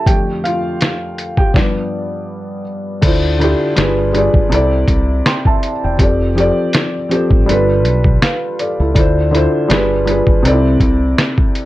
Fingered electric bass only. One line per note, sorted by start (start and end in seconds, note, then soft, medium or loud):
3.03 3.53 D2 loud
3.78 4.28 G1 medium
4.35 4.49 G#1 medium
4.52 4.84 C2 loud
4.88 5.21 C2 medium
5.84 5.98 E1 medium
6.00 6.50 F1 loud
7.31 7.50 A1 medium
7.49 7.86 G1 loud
7.86 8.17 B1 medium
8.80 8.94 C#2 medium
8.96 9.46 D2 loud
9.70 10.20 G1 loud
10.27 10.42 G#1 medium
10.45 10.77 C2 loud
10.81 11.13 C2 medium